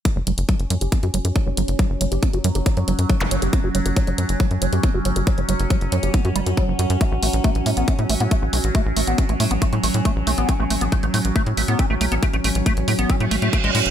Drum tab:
HH |x-xxxxxxxxxxx-xx|x-xxxxxxxxxxx-xx|x-xxxxxxxxxxx-xx|xxxxxxxxxxxxx-xx|
BD |o---o---o---o---|o---o---o---o---|o---o---o---o---|o---o---o---o---|

HH |x-oxxxoxxxoxx-ox|x-oxxxoxxxoxx-ox|x-oxxxoxxxoxx-ox|xxoxxxoxxxoxxxox|
BD |o---o---o---o---|o---o---o---o---|o---o---o---o---|o---o---o---o---|